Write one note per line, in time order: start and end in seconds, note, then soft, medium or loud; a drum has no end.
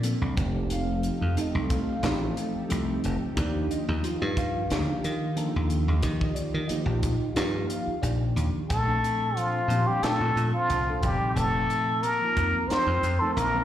0.00 0.13 A#2 loud
0.00 0.35 F3 medium
0.00 0.36 A#3 medium
0.00 0.37 A#3 medium
0.00 0.35 C4 medium
0.00 0.36 D4 medium
0.00 0.38 D4 medium
0.00 0.68 D5 medium
0.00 closed hi-hat medium
0.04 0.38 A4 medium
0.21 0.35 C2 medium
0.36 1.08 F1 medium
0.36 1.23 F3 medium
0.36 3.35 F3 medium
0.36 1.23 A3 medium
0.36 1.23 C4 medium
0.36 1.24 D#4 medium
0.36 3.35 D#4 medium
0.36 1.24 G4 medium
0.36 8.67 G4 medium
0.36 3.35 A4 medium
0.36 kick loud
0.36 closed hi-hat medium
0.70 1.34 F5 medium
0.70 closed hi-hat medium
1.03 closed hi-hat medium
1.21 1.35 F2 medium
1.36 1.94 F3 medium
1.36 1.94 A3 medium
1.36 1.95 C4 medium
1.36 1.95 D#4 medium
1.36 1.95 A4 medium
1.36 muted slap bass stroke soft
1.36 closed hi-hat medium
1.41 1.72 D#5 medium
1.55 1.83 C2 medium
1.70 2.67 F5 medium
1.70 kick medium
1.70 closed hi-hat medium
2.02 2.32 A1 medium
2.02 2.61 F3 medium
2.02 2.61 A3 medium
2.02 2.61 C4 medium
2.02 2.61 D#4 medium
2.02 2.62 G4 medium
2.02 snare loud
2.02 closed hi-hat medium
2.37 closed hi-hat medium
2.56 muted slap bass stroke soft
2.68 2.99 C2 medium
2.68 3.27 F3 medium
2.68 3.28 A3 medium
2.68 3.28 C4 medium
2.68 3.28 D#4 medium
2.68 3.28 A4 medium
2.68 closed hi-hat medium
3.04 3.20 F1 medium
3.04 closed hi-hat medium
3.22 muted slap bass stroke soft
3.35 3.65 D#2 medium
3.35 8.66 D#3 medium
3.35 3.94 F3 medium
3.35 3.94 A#3 medium
3.35 3.94 D4 medium
3.35 3.94 D#4 medium
3.35 8.66 F4 medium
3.35 3.95 G4 medium
3.35 3.70 D5 medium
3.35 kick loud
3.35 closed hi-hat medium
3.71 4.34 D#5 medium
3.71 closed hi-hat medium
3.88 4.02 D#2 medium
4.02 4.61 F3 medium
4.02 4.61 A#3 medium
4.02 4.61 D#4 medium
4.02 4.62 F4 medium
4.02 closed hi-hat medium
4.22 4.73 G2 medium
4.37 5.34 F5 loud
4.37 kick medium
4.37 closed hi-hat medium
4.69 4.86 D2 loud
4.69 5.27 F3 medium
4.69 5.28 A#3 medium
4.69 5.28 D4 medium
4.69 5.28 D#4 medium
4.69 5.28 G4 medium
4.69 snare loud
4.69 closed hi-hat medium
5.04 5.47 D#3 medium
5.04 closed hi-hat medium
5.36 5.94 F3 medium
5.36 5.94 A#3 medium
5.36 5.94 D4 medium
5.36 5.95 D#4 medium
5.36 5.95 A4 loud
5.36 closed hi-hat medium
5.56 5.84 D#2 medium
5.70 closed hi-hat medium
5.88 6.01 D#2 medium
6.02 6.31 D#3 medium
6.02 6.61 F3 medium
6.02 6.61 A#3 medium
6.02 6.62 D#4 medium
6.02 6.61 F4 medium
6.02 6.62 G4 medium
6.02 6.36 D#5 medium
6.02 kick loud
6.02 closed hi-hat medium
6.21 kick medium
6.35 6.68 D5 medium
6.35 closed hi-hat medium
6.54 6.68 D#3 medium
6.68 7.27 F3 medium
6.68 7.28 A#3 medium
6.68 7.28 D#4 medium
6.68 7.28 F4 medium
6.68 7.28 G4 medium
6.68 7.65 D#5 medium
6.68 muted slap bass stroke soft
6.68 closed hi-hat medium
6.86 7.15 A#1 loud
7.03 kick medium
7.03 closed hi-hat medium
7.34 7.65 G2 medium
7.34 7.93 F3 medium
7.34 7.94 A#3 medium
7.34 7.94 D#4 medium
7.34 7.94 F4 medium
7.34 7.94 G4 medium
7.34 snare loud
7.34 closed hi-hat medium
7.67 8.01 F5 medium
7.67 closed hi-hat medium
7.87 muted slap bass stroke soft
8.02 8.31 A#1 medium
8.02 8.60 F3 medium
8.02 8.60 A#3 medium
8.02 8.61 D4 medium
8.02 8.61 D#4 medium
8.02 8.61 G4 medium
8.02 8.22 D5 medium
8.02 closed hi-hat medium
8.36 8.52 D#2 loud
8.36 closed hi-hat medium
8.54 muted slap bass stroke soft
8.69 8.98 A#1 medium
8.69 9.38 A3 medium
8.69 9.38 A4 medium
8.69 kick loud
8.69 closed hi-hat medium
8.87 9.59 A#2 medium
8.87 9.58 F3 medium
8.87 9.59 C4 medium
8.87 9.59 D4 medium
8.87 9.59 A4 medium
9.04 closed hi-hat medium
9.37 9.89 F3 medium
9.37 9.89 F4 medium
9.37 closed hi-hat medium
9.68 9.84 A#2 medium
9.68 9.99 F3 medium
9.68 9.99 A#3 medium
9.68 9.99 C4 medium
9.68 9.99 D4 medium
9.68 10.00 G4 medium
9.68 closed hi-hat medium
9.87 10.05 G3 medium
9.87 10.05 G4 medium
10.02 10.75 A#2 medium
10.02 10.75 F3 medium
10.02 10.55 A3 medium
10.02 10.75 C4 medium
10.02 10.75 D4 medium
10.02 10.76 F4 medium
10.02 10.53 A4 medium
10.02 muted slap bass stroke soft
10.02 snare loud
10.02 closed hi-hat medium
10.21 10.34 A#2 medium
10.36 10.52 A#2 medium
10.36 closed hi-hat medium
10.54 11.04 F3 medium
10.54 11.04 F4 medium
10.70 10.98 C2 medium
10.70 closed hi-hat medium
10.88 11.01 F3 medium
10.88 11.02 A#3 medium
10.88 11.02 C4 medium
10.88 11.02 D4 medium
10.88 11.02 A4 medium
11.02 11.19 F1 medium
11.02 12.03 A#2 medium
11.02 12.03 F3 medium
11.02 11.36 G3 medium
11.02 12.03 C4 medium
11.02 12.04 D#4 medium
11.02 11.38 G4 medium
11.02 kick loud
11.02 closed hi-hat medium
11.22 muted slap bass stroke soft
11.35 11.65 F1 medium
11.35 12.05 A3 medium
11.35 12.04 A4 medium
11.35 closed hi-hat medium
11.70 closed hi-hat medium
12.03 12.72 A#3 medium
12.03 12.70 A#4 medium
12.03 closed hi-hat medium
12.21 13.06 F3 medium
12.21 13.06 A#3 medium
12.21 13.06 C4 medium
12.21 13.06 D#4 medium
12.21 13.06 F4 medium
12.36 12.52 F2 medium
12.36 kick medium
12.36 closed hi-hat medium
12.68 13.23 C4 medium
12.68 13.21 C5 medium
12.68 muted slap bass stroke soft
12.68 snare loud
12.68 closed hi-hat medium
12.87 13.00 F2 medium
13.03 13.18 F2 medium
13.03 closed hi-hat medium
13.20 13.49 F3 medium
13.20 13.35 A3 medium
13.20 13.50 A#3 medium
13.20 13.50 C4 medium
13.20 13.50 D#4 medium
13.20 13.34 A4 medium
13.20 13.50 A#4 medium
13.35 13.64 A#1 medium
13.35 13.64 A#3 medium
13.35 13.64 A#4 medium
13.35 closed hi-hat medium
13.54 13.64 F3 medium
13.54 13.64 A#3 medium
13.54 13.64 C4 medium
13.54 13.64 D#4 medium
13.54 13.64 A#4 medium